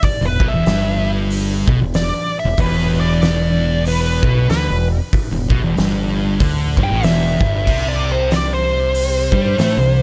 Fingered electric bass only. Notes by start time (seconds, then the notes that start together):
0.21 E1
0.40 B1
0.53 E1
0.67 G1
1.68 B1
1.81 E1
2.45 E1
2.58 E1
4.23 B1
4.50 D2
4.70 E1
5.33 E1
5.50 B1
5.64 E1
5.78 G1
6.40 D2
6.77 G1
6.92 A1
7.05 E1
7.40 G1
7.67 C2
9.32 G2
9.59 A2
9.77 C2